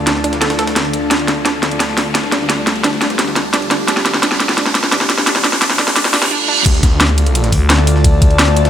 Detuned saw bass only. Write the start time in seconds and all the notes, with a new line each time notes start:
Already playing: D2
1.11 D2
2.50 D2
3.88 D2
5.27 D2
5.62 D2
5.96 D2
6.14 D#1
6.66 D2